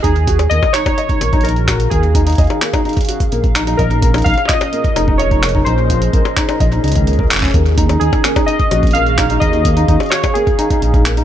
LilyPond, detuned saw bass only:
\new Staff \with { instrumentName = "Detuned saw bass" } { \clef bass \time 4/4 \key ees \minor \tempo 4 = 128 ees,4 ees,8 r4 bes,,4. | ees,4 ees,8 r4. bes,,4 | bes,,4 bes,,8 r4 f,,4. | bes,,4 bes,,8 r8 bes,,8 des,4 f,,8 |
ees,4 ees,8 r4 bes,,4. | ees,4 ees,8 r4. bes,,4 | }